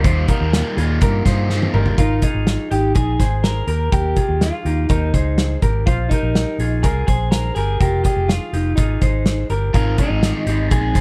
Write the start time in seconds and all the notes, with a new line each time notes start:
0.04 D#2 D#3 G3 A#3 D#4 F4 G4 C5, kick, closed hi-hat
0.28 A#3 D#4 F4 G4 A#4, kick, closed hi-hat
0.41 D#2
0.53 G3 A#3 D#4 F4, snare, closed hi-hat
0.77 D#2 A#3 D#4 F4 G#4, closed hi-hat
1.01 G2 G4 A#4, kick, closed hi-hat
1.25 G2 A#3 D#4 F4 G#4 C5, kick, snare, closed hi-hat
1.49 G3 A#3 D#4 F4, snare
1.62 high tom
1.73 G1 G4 A#4, mid tom
1.86 floor tom
1.98 G#1 D#4 F4 A#4, kick, closed hi-hat
2.22 D#4 F4 G#4, kick, closed hi-hat
2.35 G#1
2.47 snare, closed hi-hat
2.71 G#1 D#4 G4, closed hi-hat
2.95 A#1 D#4 G#4, kick, closed hi-hat
3.19 G#1 G#4 C5, kick, snare, closed hi-hat
3.44 A#4, snare, closed hi-hat
3.67 D#2 G4 A#4, closed hi-hat
3.92 D#2 G4 A#4, kick, closed hi-hat
4.16 F4 G#4, kick, closed hi-hat
4.29 D#2
4.41 F4, snare, closed hi-hat
4.65 D#2 D#4 G4, closed hi-hat
4.89 D#2 D#4 G4 A#4, kick, closed hi-hat
5.14 C#2 G#4 C5, kick, closed hi-hat
5.38 snare, closed hi-hat
5.62 G#1 G4 A#4, kick, closed hi-hat
5.86 A#1 F4 C5, kick, closed hi-hat
6.09 D#4 G4 A#4, kick, closed hi-hat
6.23 A#1
6.35 snare, closed hi-hat
6.59 A#1 F4 G#4, closed hi-hat
6.83 C2 F4 G#4 A#4, kick, closed hi-hat
7.07 A#1 G#4 C5, kick, closed hi-hat
7.31 A#4, snare, closed hi-hat
7.55 G1 G4 G#4 A#4, closed hi-hat
7.80 F1 F4 G4 A#4, kick, closed hi-hat
8.04 F4 G4 G#4, kick, closed hi-hat
8.16 F1
8.28 F4, snare, closed hi-hat
8.53 F1 D#4 G4, closed hi-hat
8.76 G#1 D#4 F4 G#4, kick, closed hi-hat
9.01 G#1 G#4 C5, kick, closed hi-hat
9.26 snare, closed hi-hat
9.50 G1 G4 A#4, closed hi-hat
9.73 G#1 G#2 D#3 G#3 C4 D#4 F4 G#4 A#4, kick, closed hi-hat
9.97 G#3 C4 D#4 F4 G#4, kick, closed hi-hat
10.10 G#1
10.22 G#2 D#3 G#3 C4 D#4 G#4, snare, closed hi-hat
10.46 G#1 G#3 C4 D#4 G4 G#4, closed hi-hat
10.70 A#1 G#3 C4 D#4 G#4, kick, closed hi-hat
10.94 G#1 G#3 C4 D#4 G#4 C5, kick, snare, closed hi-hat